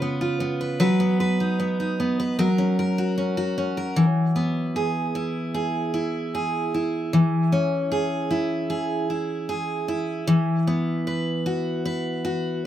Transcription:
0.00 0.89 C#3 medium
0.00 0.39 B3 medium
0.00 0.20 F4 medium
0.00 0.60 B4 medium
0.21 0.88 F4 medium
0.40 0.88 B3 medium
0.61 0.79 B4 medium
0.80 2.38 F#3 medium
0.80 1.19 B4 medium
1.00 1.58 B3 medium
1.20 2.18 B4 medium
1.40 1.79 D#4 medium
1.60 1.98 B3 medium
1.80 2.47 D#4 medium
2.00 2.47 B3 medium
2.20 2.39 B4 medium
2.39 4.79 F#3 medium
2.39 2.78 A#4 medium
2.58 3.16 C#4 medium
2.79 3.76 A#4 medium
2.98 3.37 F#4 medium
3.18 3.56 C#4 medium
3.37 4.79 F#4 medium
3.58 4.05 C#4 medium
3.77 4.05 A#4 medium
3.96 7.13 E3 medium
4.36 7.20 B3 medium
4.76 5.54 G#4 medium
5.15 5.93 E4 medium
5.54 6.34 G#4 medium
5.94 6.74 E4 medium
6.35 7.91 G#4 medium
6.74 8.30 E4 medium
7.13 10.27 E3 medium
7.52 10.36 C#4 medium
7.92 8.69 G#4 medium
8.31 9.09 E4 medium
8.70 9.48 G#4 medium
9.10 9.88 E4 medium
9.49 10.36 G#4 medium
9.88 11.46 E4 medium
10.27 12.66 E3 medium
10.67 12.66 B3 medium
11.07 11.85 B4 medium
11.46 12.24 F#4 medium
11.85 12.65 B4 medium
12.25 12.66 F#4 medium

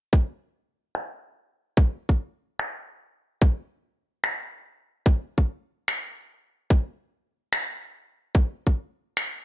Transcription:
0.13 kick loud
0.95 finger snap medium
1.77 kick loud
2.09 kick medium
2.59 finger snap medium
3.42 kick loud
4.24 finger snap medium
5.06 kick loud
5.38 kick medium
5.88 finger snap medium
6.70 kick loud
7.53 finger snap medium
8.35 kick loud
8.67 kick medium
9.17 finger snap medium

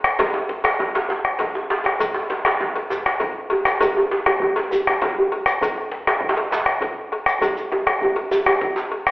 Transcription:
0.04 bombo rim medium
0.04 djembe slap medium
0.04 djembe tone medium
0.19 bombo low loud
0.19 cowbell medium
0.19 djembe slap loud
0.19 djembe slap soft
0.19 djembe bass medium
0.34 bombo rim soft
0.34 djembe slap medium
0.49 djembe slap medium
0.49 djembe tone medium
0.64 bombo rim medium
0.64 cowbell medium
0.64 djembe slap medium
0.64 djembe slap soft
0.79 bombo low medium
0.79 djembe slap medium
0.95 bombo rim soft
0.95 cowbell medium
0.95 djembe slap medium
0.95 djembe slap loud
0.95 djembe tone medium
1.09 djembe slap medium
1.09 djembe bass medium
1.25 bombo rim medium
1.39 bombo low medium
1.39 cowbell medium
1.39 djembe slap medium
1.39 djembe tone medium
1.54 djembe slap soft
1.54 djembe slap medium
1.70 cowbell soft
1.70 djembe slap loud
1.84 bombo rim medium
1.84 djembe slap medium
1.84 djembe tone medium
1.99 bombo low medium
1.99 cowbell medium
1.99 djembe bass medium
1.99 shekere medium
2.14 bombo rim soft
2.14 djembe slap medium
2.30 djembe slap medium
2.30 djembe tone medium
2.45 bombo rim medium
2.45 cowbell medium
2.45 djembe slap loud
2.60 bombo low medium
2.60 djembe slap medium
2.75 cowbell medium
2.75 djembe slap medium
2.75 djembe tone medium
2.90 bombo rim soft
2.90 djembe slap medium
2.90 djembe bass medium
2.90 shekere medium
3.06 bombo rim medium
3.06 djembe slap medium
3.20 bombo low loud
3.20 cowbell medium
3.20 djembe slap medium
3.20 djembe tone medium
3.50 bombo rim soft
3.50 cowbell medium
3.50 djembe tone loud
3.65 bombo rim medium
3.65 djembe slap medium
3.65 djembe tone medium
3.65 shekere soft
3.81 bombo low loud
3.81 cowbell medium
3.81 djembe bass medium
3.81 shekere medium
3.96 bombo rim soft
3.96 djembe tone loud
4.11 djembe slap medium
4.11 djembe tone medium
4.26 bombo rim medium
4.26 cowbell medium
4.26 djembe bass medium
4.40 bombo low medium
4.40 djembe tone loud
4.56 cowbell medium
4.56 djembe slap medium
4.56 djembe tone medium
4.71 bombo rim soft
4.71 djembe bass medium
4.71 shekere medium
4.87 bombo rim medium
4.87 djembe tone loud
5.02 bombo low loud
5.02 cowbell medium
5.02 djembe slap medium
5.04 djembe slap medium
5.18 djembe bass medium
5.32 bombo rim soft
5.32 cowbell medium
5.46 bombo rim medium
5.46 djembe slap medium
5.46 djembe tone medium
5.46 shekere soft
5.61 bombo low loud
5.61 cowbell medium
5.61 djembe bass medium
5.61 shekere medium
5.78 bombo rim soft
5.92 djembe slap medium
5.92 djembe tone medium
6.07 bombo rim medium
6.07 cowbell medium
6.07 djembe slap loud
6.21 bombo low loud
6.29 djembe slap loud
6.37 cowbell medium
6.37 djembe slap medium
6.37 djembe tone medium
6.51 bombo rim soft
6.51 djembe slap loud
6.51 djembe bass medium
6.51 shekere medium
6.66 bombo rim medium
6.81 bombo low loud
6.81 cowbell soft
6.81 djembe slap medium
6.81 djembe tone medium
7.12 bombo rim soft
7.12 cowbell soft
7.26 bombo rim medium
7.26 djembe slap medium
7.26 djembe tone medium
7.26 shekere soft
7.41 bombo rim soft
7.41 bombo low loud
7.41 cowbell medium
7.41 djembe tone loud
7.41 djembe bass medium
7.41 shekere medium
7.57 shekere soft
7.72 bombo rim soft
7.72 djembe slap medium
7.72 djembe tone loud
7.72 djembe tone medium
7.87 bombo rim medium
7.87 cowbell soft
7.87 djembe slap soft
8.01 bombo low loud
8.01 djembe tone loud
8.16 bombo rim soft
8.16 cowbell soft
8.16 djembe slap medium
8.16 djembe tone medium
8.31 bombo rim soft
8.31 djembe tone loud
8.31 djembe bass medium
8.31 shekere medium
8.46 bombo rim medium
8.46 djembe tone loud
8.61 bombo low loud
8.61 djembe slap medium
8.61 djembe tone medium
8.76 djembe slap loud
8.76 shekere soft
8.91 cowbell soft
8.91 djembe slap soft
9.07 bombo rim medium
9.07 djembe slap medium
9.07 djembe tone medium
9.07 shekere soft

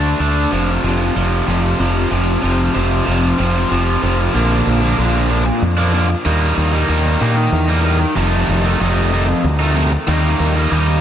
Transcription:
0.00 0.13 D2 loud
0.00 0.18 D3 medium
0.00 0.19 A3 medium
0.00 0.19 D4 loud
0.19 0.45 D2 medium
0.19 0.50 D3 medium
0.19 0.51 A3 medium
0.19 0.51 D4 medium
0.51 0.77 F1 medium
0.51 0.83 F2 medium
0.51 0.83 C3 loud
0.51 0.84 F3 loud
0.83 1.09 F1 medium
0.83 1.15 F2 medium
0.83 1.14 C3 medium
0.83 1.16 F3 medium
1.15 1.41 F1 loud
1.15 1.46 F2 medium
1.15 1.46 C3 medium
1.15 1.48 F3 loud
1.47 1.73 F1 medium
1.47 1.78 F2 medium
1.47 1.79 C3 medium
1.47 1.80 F3 medium
1.79 2.04 F1 loud
1.79 2.09 F2 medium
1.79 2.10 C3 loud
1.79 2.11 F3 loud
2.10 2.36 F1 medium
2.10 2.41 F2 medium
2.10 2.42 C3 medium
2.10 2.42 F3 medium
2.42 2.68 F1 loud
2.42 2.73 F2 loud
2.42 2.74 C3 loud
2.42 2.74 F3 loud
2.75 3.00 F1 medium
2.75 3.05 F2 medium
2.75 3.06 C3 medium
2.75 3.06 F3 medium
3.06 3.32 F1 loud
3.06 3.37 F2 medium
3.06 3.37 C3 medium
3.06 3.37 F3 loud
3.38 3.64 F1 medium
3.38 3.69 F2 medium
3.38 3.69 C3 loud
3.38 3.70 F3 loud
3.70 3.96 F1 loud
3.70 4.01 F2 loud
3.70 4.02 C3 medium
3.70 4.02 F3 loud
4.02 4.28 F1 loud
4.02 4.33 F2 medium
4.02 4.33 C3 medium
4.02 4.33 F3 medium
4.34 4.61 A#1 loud
4.34 4.96 A#2 loud
4.34 4.97 D3 loud
4.34 4.82 F3 loud
4.34 4.82 A#3 loud
4.34 4.81 D4 loud
4.67 4.93 A#1 loud
4.81 4.98 F3 medium
4.81 4.99 A#3 medium
4.81 4.99 D4 medium
4.98 5.50 A#1 loud
4.98 5.62 A#2 loud
4.98 5.28 D3 loud
4.98 5.28 F3 loud
4.98 5.29 A#3 loud
4.98 5.29 D4 medium
5.29 5.45 D3 medium
5.29 5.45 F3 medium
5.29 5.45 A#3 medium
5.29 5.44 D4 medium
5.45 muted overdriven electric guitar stroke medium
5.62 6.14 F2 loud
5.77 5.92 F3 medium
5.77 5.93 A#3 medium
5.77 5.94 D4 medium
5.93 6.09 D3 medium
5.93 6.09 F3 medium
5.93 6.08 A#3 medium
5.93 6.08 D4 medium
6.09 muted overdriven electric guitar stroke medium
6.25 6.51 D#2 medium
6.25 6.87 D#3 loud
6.25 6.73 G3 loud
6.25 6.72 A#3 loud
6.25 6.72 D#4 medium
6.58 6.83 D#2 medium
6.73 6.88 G3 medium
6.73 6.88 A#3 medium
6.73 6.90 D#4 medium
6.88 7.15 D#2 loud
6.88 7.19 D#3 loud
6.88 7.20 G3 loud
6.88 7.20 A#3 loud
6.88 7.22 D#4 loud
7.21 7.47 A#2 loud
7.21 7.69 D#3 medium
7.21 7.36 G3 medium
7.21 7.36 A#3 medium
7.21 7.37 D#4 loud
7.37 muted overdriven electric guitar stroke medium
7.52 8.04 E2 loud
7.68 7.83 G3 medium
7.68 7.83 A#3 medium
7.68 7.85 D#4 medium
7.83 8.14 D#3 medium
7.83 7.99 G3 medium
7.83 7.99 A#3 medium
7.83 7.99 D#4 medium
8.00 muted overdriven electric guitar stroke medium
8.15 8.42 F1 loud
8.15 8.78 F2 medium
8.15 8.79 C3 loud
8.15 8.64 D#3 loud
8.15 8.63 A3 loud
8.15 8.63 D#4 loud
8.49 8.75 F1 loud
8.63 8.79 D#3 medium
8.63 8.80 A3 medium
8.63 8.81 D#4 medium
8.79 9.32 F1 loud
8.79 9.44 F2 loud
8.79 9.11 C3 medium
8.79 9.12 D#3 loud
8.79 9.12 A3 loud
8.79 9.12 D#4 loud
9.12 9.28 C3 medium
9.12 9.28 D#3 medium
9.12 9.27 A3 medium
9.12 9.27 D#4 medium
9.28 muted overdriven electric guitar stroke medium
9.44 9.96 D2 loud
9.60 9.75 D#3 medium
9.60 9.75 A3 medium
9.60 9.76 D#4 medium
9.75 9.92 C3 medium
9.75 9.91 D#3 medium
9.75 9.91 A3 medium
9.75 9.91 D#4 medium
9.92 muted overdriven electric guitar stroke medium
10.07 10.34 D#2 loud
10.07 10.70 D#3 loud
10.07 10.55 G3 medium
10.07 10.56 A#3 loud
10.07 10.54 D#4 loud
10.40 10.66 D#2 loud
10.55 10.70 G3 medium
10.55 10.72 A#3 medium
10.55 10.72 D#4 medium
10.71 10.98 D#2 loud
10.71 11.01 D#3 loud
10.71 11.01 G3 loud
10.71 11.01 A#3 loud
10.71 11.01 D#4 loud

